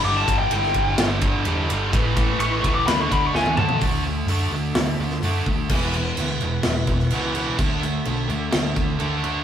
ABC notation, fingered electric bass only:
X:1
M:4/4
L:1/8
Q:1/4=127
K:Dlyd
V:1 name="Fingered electric bass" clef=bass
=G,,, G,,, G,,,2 G,,,2 E,, G,,, | A,,, A,,, A,,, C,, D,, D,, D,, D,, | D,, D,, F,, D,, D,, D,, F,, D,, | E,,,2 D,, E,,, E,,, E,,, C,,2 |
D,,2 B,,, D,, D,, D,, D,,2 |]